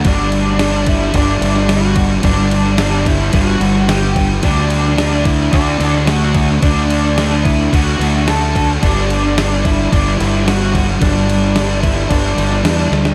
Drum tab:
CC |x-x-x-x-x-x-x-x-|x-x-x-x-x-x-x-x-|x-x-x-x-x-x-x-x-|x-x-x-x-x-x-x-x-|
SD |----o------oo---|----o------oo---|----o------oo-o-|----o------oo---|
BD |o-----o-o-----o-|o-----o-o-----o-|o-----o-o-----o-|o-----o-o-----o-|

CC |x-x-x-x-x-x-x-x-|x-x-x-x-x-x-x---|
SD |----o-------o-o-|----o------oo-oo|
BD |o-----o-o-----o-|o-----o-o-------|